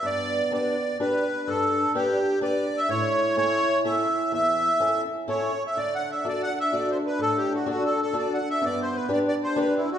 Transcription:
<<
  \new Staff \with { instrumentName = "Accordion" } { \time 3/4 \key g \major \tempo 4 = 126 d''4 d''4 b'4 | a'4 g'4 d''8. e''16 | cis''4 cis''4 e''4 | e''4. r8 cis''8. e''16 |
\tuplet 3/2 { d''8 fis''8 e''8 d''8 fis''8 e''8 d''8 c''8 b'8 } | \tuplet 3/2 { a'8 g'8 fis'8 fis'8 a'8 a'8 d''8 fis''8 e''8 } | \tuplet 3/2 { d''8 c''8 b'8 d''8 d''8 c''8 b'8 e'8 fis'8 } | }
  \new Staff \with { instrumentName = "Steel-string acoustic guitar" } { \time 3/4 \key g \major g,4 <d' g' b'>8 r8 <d' g' b'>8 r8 | g,4 <d' g' b'>8 r8 <d' g' b'>8 r8 | a,4 <cis' e' a'>8 r8 <cis' e' a'>8 r8 | e,4 <cis' e' a'>8 r8 <cis' e' a'>8 r8 |
d4 <d' fis' a'>8 r8 <d' fis' a'>8 r8 | a,4 <d' fis' a'>8 r8 <d' fis' a'>8 r8 | g,4 <d' g' b'>8 r8 <d' g' b'>8 r8 | }
  \new Staff \with { instrumentName = "Euphonium" } { \time 3/4 \key g \major b2 d'4~ | d'2. | e'2.~ | e'2~ e'8 r8 |
d'2.~ | d'2. | b4 d'2 | }
>>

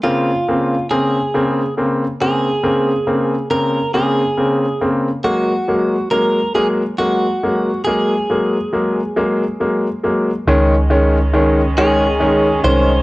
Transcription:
<<
  \new Staff \with { instrumentName = "Clean electric guitar" } { \time 6/8 \key bes \minor \tempo 4. = 46 f'4 aes'4 r8 aes'8~ | aes'4 bes'8 aes'4 r8 | ges'4 bes'8 aes'8 ges'4 | aes'2~ aes'8 r8 |
r4. aes'4 c''8 | }
  \new Staff \with { instrumentName = "Grand piano" } { \clef bass \time 6/8 \key bes \minor <des bes c'>8 <des bes c'>8 <des bes c'>8 <des bes c'>8 <des bes c'>8 <des bes c'>8 | <des bes c'>8 <des bes c'>8 <des bes c'>8 <des bes c'>8 <des bes c'>8 <des bes c'>8 | <ges aes bes>8 <ges aes bes>8 <ges aes bes>8 <ges aes bes>8 <ges aes bes>8 <ges aes bes>8 | <ges aes bes>8 <ges aes bes>8 <ges aes bes>8 <ges aes bes>8 <ges aes bes>8 <ges aes bes>8 |
<ees aes des'>8 <ees aes des'>8 <ees aes des'>8 <ees aes des'>8 <ees aes des'>8 <ees aes des'>8 | }
  \new Staff \with { instrumentName = "String section" } { \clef bass \time 6/8 \key bes \minor r2. | r2. | r2. | r2. |
<ees aes des'>2. | }
  \new Staff \with { instrumentName = "Fingered electric bass" } { \clef bass \time 6/8 \key bes \minor r2. | r2. | r2. | r2. |
des,2~ des,8 c,8 | }
>>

